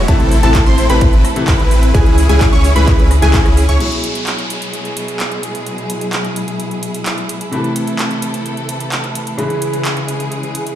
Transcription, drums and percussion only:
0.08 kick, closed hi-hat, ride
0.20 closed hi-hat
0.31 open hi-hat
0.43 closed hi-hat
0.55 kick, clap, closed hi-hat, ride
0.66 closed hi-hat
0.78 open hi-hat
0.90 closed hi-hat
1.01 kick, closed hi-hat, ride
1.13 closed hi-hat
1.25 cross-stick, open hi-hat
1.36 closed hi-hat
1.48 kick, cross-stick, clap, closed hi-hat, ride
1.60 closed hi-hat
1.71 open hi-hat
1.83 closed hi-hat
1.95 kick, closed hi-hat, ride
2.06 closed hi-hat
2.18 open hi-hat
2.29 closed hi-hat
2.41 kick, clap, closed hi-hat, ride
2.53 closed hi-hat
2.64 open hi-hat
2.76 closed hi-hat
2.87 kick, clap, closed hi-hat, ride
2.99 closed hi-hat
3.11 cross-stick, open hi-hat
3.22 closed hi-hat
3.34 kick, clap, closed hi-hat, ride
3.46 cross-stick, closed hi-hat
3.57 open hi-hat
3.69 closed hi-hat
3.80 closed hi-hat, crash
3.92 closed hi-hat
4.04 closed hi-hat
4.15 closed hi-hat
4.27 clap, closed hi-hat
4.39 closed hi-hat
4.50 closed hi-hat
4.62 closed hi-hat
4.73 closed hi-hat
4.85 closed hi-hat
4.97 closed hi-hat
5.08 closed hi-hat
5.20 clap, closed hi-hat
5.32 closed hi-hat
5.43 closed hi-hat
5.55 closed hi-hat
5.66 closed hi-hat
5.78 closed hi-hat
5.90 closed hi-hat
6.01 closed hi-hat
6.13 clap, closed hi-hat
6.25 closed hi-hat
6.36 closed hi-hat
6.48 closed hi-hat
6.60 closed hi-hat
6.71 closed hi-hat
6.83 closed hi-hat
6.94 closed hi-hat
7.06 clap, closed hi-hat
7.18 closed hi-hat
7.29 closed hi-hat
7.41 closed hi-hat
7.53 closed hi-hat
7.64 closed hi-hat
7.76 closed hi-hat
7.87 closed hi-hat
7.99 clap, closed hi-hat
8.11 closed hi-hat
8.22 closed hi-hat
8.34 closed hi-hat
8.46 closed hi-hat
8.57 closed hi-hat
8.69 closed hi-hat
8.80 closed hi-hat
8.92 clap, closed hi-hat
9.04 closed hi-hat
9.15 closed hi-hat
9.27 closed hi-hat
9.39 closed hi-hat
9.50 closed hi-hat
9.62 closed hi-hat
9.74 closed hi-hat
9.85 clap, closed hi-hat
9.97 closed hi-hat
10.08 closed hi-hat
10.20 closed hi-hat
10.32 closed hi-hat
10.43 closed hi-hat
10.55 closed hi-hat
10.67 closed hi-hat

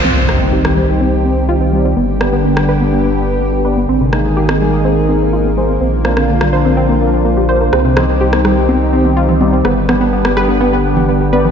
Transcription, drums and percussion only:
0.29 cross-stick
0.65 cross-stick
2.21 cross-stick
2.57 cross-stick
4.13 cross-stick
4.49 cross-stick
6.05 cross-stick
6.17 cross-stick
6.41 cross-stick
7.73 cross-stick
7.97 cross-stick, high conga, low conga
8.33 cross-stick, high conga
8.45 cross-stick
8.69 high conga
9.05 high conga
9.29 low conga
9.41 high conga
9.65 cross-stick
9.89 cross-stick, high conga, low conga
10.25 cross-stick, high conga
10.37 cross-stick
10.61 high conga
10.97 high conga, low conga
11.33 high conga
11.45 low conga

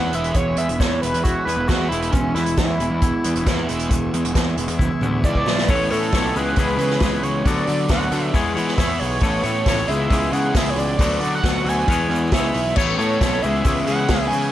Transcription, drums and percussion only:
0.13 closed hi-hat, shaker
0.24 closed hi-hat
0.34 kick, closed hi-hat, shaker
0.57 closed hi-hat, shaker
0.69 closed hi-hat
0.80 kick, snare, closed hi-hat, shaker
1.03 closed hi-hat, shaker
1.14 closed hi-hat
1.25 kick, closed hi-hat, shaker
1.48 closed hi-hat, shaker
1.68 kick, snare, closed hi-hat, shaker
1.92 closed hi-hat, shaker
2.02 closed hi-hat
2.12 kick, closed hi-hat, shaker
2.36 snare, closed hi-hat, shaker
2.46 closed hi-hat
2.57 kick, snare, closed hi-hat, shaker
2.80 closed hi-hat, shaker
3.02 kick, closed hi-hat, shaker
3.24 closed hi-hat, shaker
3.35 closed hi-hat
3.46 kick, snare, closed hi-hat, shaker
3.69 closed hi-hat, shaker
3.79 closed hi-hat
3.91 kick, closed hi-hat, shaker
4.14 closed hi-hat, shaker
4.25 closed hi-hat
4.35 kick, snare, closed hi-hat, shaker
4.57 closed hi-hat, shaker
4.68 closed hi-hat
4.79 kick, high tom, shaker
5.01 mid tom, shaker
5.24 kick, shaker
5.35 kick
5.46 snare, shaker
5.58 snare
5.68 kick, open hi-hat, shaker
5.90 open hi-hat, shaker
6.03 shaker
6.12 kick, snare, open hi-hat, shaker
6.27 shaker
6.36 open hi-hat, shaker
6.48 shaker
6.56 kick, open hi-hat, shaker
6.70 shaker
6.79 open hi-hat, shaker
6.90 snare, shaker
7.00 kick, snare, open hi-hat, shaker
7.14 shaker
7.23 open hi-hat, shaker
7.45 kick, open hi-hat, shaker
7.67 open hi-hat, shaker
7.80 shaker
7.89 kick, snare, open hi-hat, shaker
8.01 shaker
8.12 open hi-hat, shaker
8.23 shaker
8.34 kick, open hi-hat, shaker
8.46 shaker
8.57 open hi-hat, shaker
8.68 snare, shaker
8.78 kick, snare, open hi-hat, shaker
8.92 shaker
9.00 open hi-hat, shaker
9.20 kick, open hi-hat, shaker
9.43 open hi-hat, shaker
9.57 shaker
9.66 kick, snare, open hi-hat, shaker
9.80 shaker
9.88 open hi-hat, shaker
10.02 shaker
10.10 kick, open hi-hat, shaker
10.24 shaker
10.33 open hi-hat, shaker
10.45 shaker
10.55 kick, snare, open hi-hat, shaker
10.68 shaker
10.76 open hi-hat, shaker
10.99 kick, open hi-hat, shaker
11.13 shaker
11.21 open hi-hat, shaker
11.36 shaker
11.44 kick, snare, open hi-hat, shaker
11.58 shaker
11.66 open hi-hat, shaker
11.81 shaker
11.88 kick, open hi-hat, shaker
12.04 shaker
12.11 open hi-hat
12.15 shaker
12.26 shaker
12.32 kick, snare, open hi-hat
12.36 shaker
12.47 shaker
12.54 open hi-hat, shaker
12.69 shaker
12.76 kick, crash, shaker
12.99 open hi-hat, shaker
13.12 shaker
13.21 kick, snare, open hi-hat, shaker
13.33 shaker
13.42 open hi-hat, shaker
13.56 shaker
13.64 kick, open hi-hat, shaker
13.77 shaker
13.87 open hi-hat, shaker
13.99 shaker
14.08 kick, snare, open hi-hat, shaker
14.22 shaker
14.30 open hi-hat, shaker

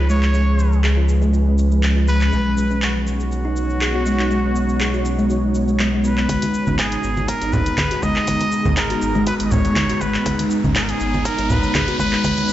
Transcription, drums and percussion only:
0.10 shaker
0.23 clap, shaker
0.34 shaker
0.59 shaker
0.72 shaker
0.84 clap, shaker
1.09 shaker
1.22 shaker
1.34 shaker
1.58 shaker
1.72 shaker
1.83 clap, shaker
2.08 shaker
2.21 clap, shaker
2.33 shaker
2.58 shaker
2.71 shaker
2.82 clap, shaker
3.07 shaker
3.20 shaker
3.32 shaker
3.57 shaker
3.70 shaker
3.81 clap, shaker
4.06 shaker
4.19 clap, shaker
4.31 shaker
4.56 shaker
4.69 shaker
4.80 clap, shaker
4.94 shaker
5.05 shaker
5.19 shaker
5.30 shaker
5.55 shaker
5.68 shaker
5.79 clap, shaker
6.04 shaker
6.18 clap, shaker
6.29 kick, closed hi-hat, high conga, shaker
6.42 closed hi-hat, muted conga
6.54 shaker
6.67 high conga, shaker
6.79 kick, clap, closed hi-hat, muted conga, shaker
6.92 closed hi-hat
7.04 shaker
7.17 muted conga, shaker
7.28 kick, closed hi-hat, shaker
7.42 closed hi-hat
7.53 low conga, shaker
7.66 closed hi-hat, muted conga, shaker
7.78 kick, clap, closed hi-hat, high conga, shaker
7.91 closed hi-hat
8.03 kick, muted conga, high conga, shaker
8.16 clap, shaker
8.27 kick, closed hi-hat, high conga, shaker
8.41 closed hi-hat, muted conga
8.52 shaker
8.65 high conga, low conga, shaker
8.77 kick, clap, closed hi-hat, muted conga, shaker
8.90 closed hi-hat
9.02 shaker
9.15 muted conga, shaker
9.27 kick, closed hi-hat, shaker
9.40 closed hi-hat
9.52 low conga, shaker
9.65 closed hi-hat, muted conga, shaker
9.76 kick, clap, closed hi-hat, high conga, shaker
9.90 closed hi-hat
10.01 kick, muted conga, shaker
10.14 clap, shaker
10.26 kick, closed hi-hat, high conga, shaker
10.39 closed hi-hat, muted conga
10.51 shaker
10.64 high conga, shaker
10.76 kick, clap, closed hi-hat, muted conga, shaker
10.89 closed hi-hat
11.00 shaker
11.14 muted conga, shaker
11.25 kick, closed hi-hat, shaker
11.38 closed hi-hat
11.50 low conga, shaker
11.63 closed hi-hat, muted conga, shaker
11.75 kick, clap, closed hi-hat, high conga, shaker
11.88 closed hi-hat
11.99 kick, muted conga, high conga, shaker
12.13 clap, shaker
12.24 kick, closed hi-hat, high conga, shaker
12.38 closed hi-hat, muted conga
12.49 shaker

